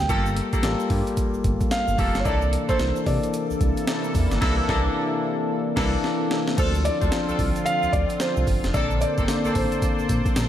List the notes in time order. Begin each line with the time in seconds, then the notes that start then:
Already playing: G3 A#3 F4 A4 G5
0.09 G1 G3 A#3 F4 G4 A4, kick, closed hi-hat, shaker
0.26 shaker
0.37 closed hi-hat
0.53 A#3 F4 G4 A4, kick, closed hi-hat, shaker
0.63 A1 G3 A#3 F4 A4, snare, closed hi-hat, shaker
0.80 shaker
0.90 G2 G3 A#3 F4 G4, kick, open hi-hat, shaker
1.07 closed hi-hat, shaker
1.17 kick, closed hi-hat, shaker
1.34 G1, shaker
1.44 G1, kick, closed hi-hat, shaker
1.61 kick, closed hi-hat, shaker
1.71 F5, snare, closed hi-hat, shaker
1.88 G1, shaker
1.98 F1 A#3 F4 G4 A4, kick, open hi-hat, shaker
2.15 G1, snare, closed hi-hat, shaker
2.20 C#5
2.25 C2 C3 E3 A#3 D4 E4 A4 D5, kick, closed hi-hat, shaker
2.42 shaker
2.53 closed hi-hat
2.69 A#3 D4 E4 A4 C5, kick, closed hi-hat, shaker
2.79 C2 E3 A#3 D4 A4, snare, closed hi-hat, shaker
2.96 shaker
3.06 C3 E3 A#3 D4 A4 D5, kick, open hi-hat, shaker
3.23 closed hi-hat, shaker
3.33 closed hi-hat, shaker
3.50 C2, shaker
3.61 C2, kick, closed hi-hat, shaker
3.77 closed hi-hat, shaker
3.87 snare, closed hi-hat, shaker
4.04 shaker
4.15 E2, kick, open hi-hat, shaker
4.31 G1, snare, closed hi-hat, shaker
4.41 C2 E3 A#3 D4 E4 A4, kick, snare, crash
4.69 C2 E3 A#3 D4 E4 A4, kick, snare
5.76 C2 E3 A#3 D4 E4 A4, kick, snare, crash
6.04 snare
6.31 snare
6.48 snare
6.58 D2 D3 F3 C4 D4 F4 A4 C5, kick, closed hi-hat, crash, shaker
6.74 shaker
6.85 D5, closed hi-hat, shaker
7.01 D2 C4 D4 F4 A4, kick, closed hi-hat, shaker
7.12 F3 C4 D4 A4, snare, closed hi-hat, shaker
7.28 C2 C4 D4 F4 A4, shaker
7.39 C2, kick, open hi-hat, shaker
7.56 closed hi-hat, shaker
7.66 F5, closed hi-hat, shaker
7.83 D2, shaker
7.93 D2 D5, kick, closed hi-hat, shaker
8.10 closed hi-hat, shaker
8.20 C5, snare, closed hi-hat, shaker
8.37 C2, shaker
8.47 G1, kick, open hi-hat, shaker
8.64 F1, snare, closed hi-hat, shaker
8.74 A#1 D3 A#3 C4 D4 G#4 A4 C5 D5, kick, closed hi-hat, tambourine, shaker
8.82 A4
8.90 shaker
9.01 D5, closed hi-hat, shaker
9.18 G1 A#3 C4 D4 A4, kick, closed hi-hat, shaker
9.28 D3 A#3 C4 A4, snare, closed hi-hat, tambourine, shaker
9.44 A1 A#3 C4 D4 A4, shaker
9.55 A1 C5, kick, open hi-hat, tambourine, shaker
9.72 closed hi-hat, shaker
9.82 kick, closed hi-hat, tambourine, shaker
9.99 A#1, shaker
10.09 A#1, kick, closed hi-hat, tambourine, shaker
10.26 kick, closed hi-hat, shaker
10.36 A#1, snare, closed hi-hat, tambourine, shaker